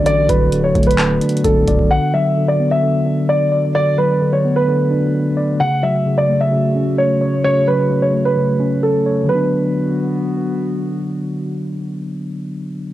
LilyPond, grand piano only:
\new Staff \with { instrumentName = "Grand piano" } { \time 4/4 \key b \minor \tempo 4 = 130 d''8 b'8. cis''8 b'4~ b'16 a'4 | fis''8 e''8. d''8 e''4~ e''16 d''4 | d''8 b'8. cis''8 b'2~ b'16 | fis''8 e''8. d''8 e''4~ e''16 cis''4 |
cis''8 b'8. cis''8 b'4~ b'16 a'4 | b'2. r4 | r1 | }